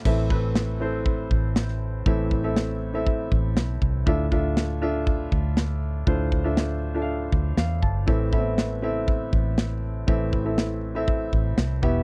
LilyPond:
<<
  \new Staff \with { instrumentName = "Upright piano" } { \time 4/4 \key a \minor \tempo 4 = 120 <c' e' a' e''>16 r16 <c' e' a' b'>8. r16 <c' e' a' c''>4. r4 | <c' e' a' e''>8 r16 <c' e' a' e''>8. r16 <c' e' a' e''>4. r8. | <d' f' a' e''>16 r16 <d' f' a' e''>8. r16 <d' f' a' e''>4. r4 | <d' f' a' c''>8 r16 <d' f' a' e''>8. r16 <d' f' a' e'' f''>4. r8. |
<c' e' a' e''>16 r16 <b c' e' a' e''>8. r16 <c' e' a' e''>4. r4 | <c' e' a' e''>8 r16 <c' e' a' e''>8. r16 <c' e' a' e''>4. r16 <b e' g' e''>8 | }
  \new Staff \with { instrumentName = "Upright piano" } { \clef bass \time 4/4 \key a \minor <a, e>4. r2 r8 | <a, e>4. r2 r8 | a,4. r2 r8 | a,4. r4. f''8 a''8 |
<a, e>4. r2 r8 | <a, e>4. r2 b,8 | }
  \new Staff \with { instrumentName = "Fingered electric bass" } { \clef bass \time 4/4 \key a \minor a,,2~ a,,8 a,,4. | a,,2~ a,,8 a,,8 b,,8 c,8 | d,2~ d,8 d,4. | d,2~ d,8 d,8 e,8 g,,8 |
a,,2~ a,,8 a,,4. | a,,2~ a,,8 a,,8 c,8 e,,8 | }
  \new DrumStaff \with { instrumentName = "Drums" } \drummode { \time 4/4 <cymc bd>8 bd8 sn4 bd8 bd8 sn16 sn8. | bd8 bd8 sn4 bd8 bd8 sn8 bd8 | bd8 bd8 sn4 bd8 bd8 sn4 | bd8 bd8 sn4 r8 bd8 sn8 bd8 |
bd8 bd8 sn4 bd8 bd8 sn4 | bd8 bd8 sn4 bd8 bd8 sn8 bd8 | }
>>